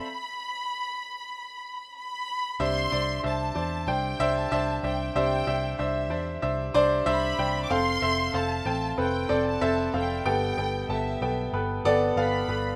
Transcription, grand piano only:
X:1
M:4/4
L:1/8
Q:1/4=94
K:C
V:1 name="Grand piano"
z8 | [Dce] [Dcd] [Dce] [Dcd] [Dcg] [Dce] [Dce] [Dce] | [Dce] [Dce] [Dce] [Dcd] [Dce] [Dcd] [Dce] [Dcg] | [CAf] [CAe] [CAf] [CAg] [CAB] [CAd] [CAe] [CAf] |
[B,Ag] [B,Ag] [B,Aa] [B,Ag] [B,AB] [B,Ad] [B,Af] [B,AB] |]
V:2 name="Grand piano" clef=bass
z8 | C,3 z4 z | C,3 z4 z | z8 |
G,,3 z4 z |]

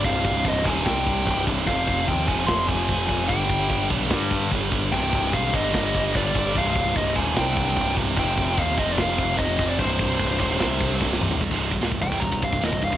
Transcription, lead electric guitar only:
X:1
M:4/4
L:1/16
Q:1/4=148
K:Cm
V:1 name="Lead electric guitar"
f4 e2 a2 g6 z2 | f4 g2 a2 c'2 a4 a2 | g6 z8 z2 | g4 f2 e6 d4 |
f4 e2 a2 g6 z2 | g4 f2 e d f4 e3 d | c12 z4 | z6 g2 b2 f2 e2 f2 |]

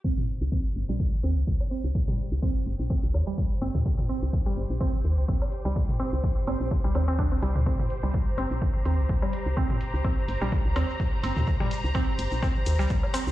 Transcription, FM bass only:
X:1
M:4/4
L:1/16
Q:"Swing 16ths" 1/4=126
K:Cm
V:1 name="FM bass" clef=bass
z3 C,, z2 G,,, B,,, z2 E,, C,, B,,, z2 C,, | z3 C,, z2 G,,, B,,, z C,, E,, z3 G,,, E,, | z3 C,, z2 G,,, B,,, z2 E,, C,, B,,, z2 C,, | z3 C,, z2 G,,, B,,, z C,, E,,3 C,, C,, D,, |
z3 C,, z2 G,,, B,,, z2 E,, C,, B,,, z2 C,, | z3 C,, z2 G,,, B,,, z C,, E,, z3 G,,, E,, | z3 C,, z2 G,,, B,,, z2 E,, C,, B,,, z2 C,, |]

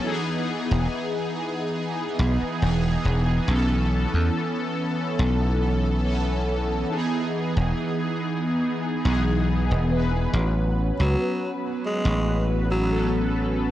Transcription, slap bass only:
X:1
M:4/4
L:1/16
Q:"Swing 16ths" 1/4=70
K:E
V:1 name="Slap bass" clef=bass
z3 E,,, z6 B,,, z E,,,2 E,,,2 | B,,,3 E,, z4 B,,,8 | z3 E,,, z6 B,,,3 E,,,3 | A,,,3 C,, z4 A,,,8 |]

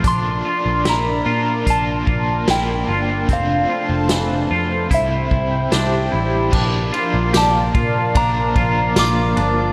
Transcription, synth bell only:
X:1
M:4/4
L:1/8
Q:1/4=74
K:Bblyd
V:1 name="Synth bell"
c'2 b2 a2 g2 | f4 e3 z | z2 a2 b2 d'2 |]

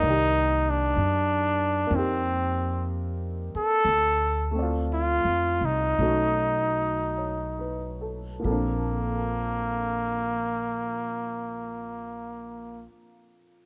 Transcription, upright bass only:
X:1
M:4/4
L:1/8
Q:"Swing" 1/4=53
K:Bb
V:1 name="Upright bass" clef=bass
C,,2 _G,,2 F,,3 z | D,,2- (3D,, F,, C,, =B,,,4 | B,,,8 |]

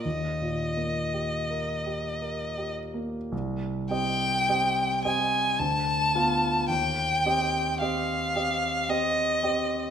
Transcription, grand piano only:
X:1
M:3/4
L:1/8
Q:1/4=55
K:Eb
V:1 name="Grand piano"
(3E,, B,, B, (3G B G (3B G B, | [K:Cm] C,, [CGe] [CGe] [CGe] D,, [=B,Ff] | E,, [CGe] [CGe] [CGe] [CGe] [CGe] |]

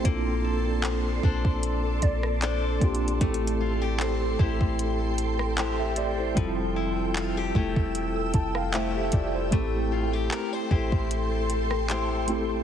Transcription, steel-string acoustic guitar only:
X:1
M:4/4
L:1/16
Q:"Swing 16ths" 1/4=76
K:Aphr
V:1 name="Steel-string acoustic guitar"
B,2 A2 c2 [DAc]6 [DAc]4 | A,2 F G c2 [EGc]6 [EGc]4 | F,2 E2 F G [A,EG]6 [A,EG]4 | A,2 F G B c [EGc]6 [EGc]4 |]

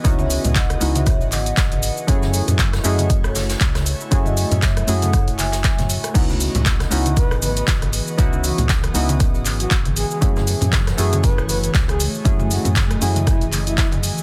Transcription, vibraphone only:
X:1
M:4/4
L:1/16
Q:"Swing 16ths" 1/4=118
K:F#dor
V:1 name="Vibraphone"
z [ce]2 z [df]2 z [ce]2 z [df]4- [df] z | [Ac]2 z4 [Fd]2 z [Ac] z6 | z [Fd]2 z e2 z [Af]2 z [eg]4- [eg] z | z16 |
z16 | z16 | z16 |]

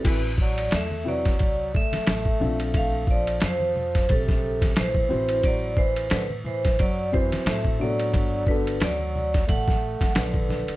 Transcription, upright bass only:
X:1
M:4/4
L:1/16
Q:"Swing 16ths" 1/4=89
K:Ador
V:1 name="Upright bass" clef=bass
A,,,4 E,,4 C,,3 z A,,,2 _B,,,2- | _B,,,4 =F,,4 B,,,4 B,,,2 A,,,2- | A,,,4 A,,4 F,,3 z A,,4 | G,,,4 D,,4 A,,,3 z _B,,,3 z |]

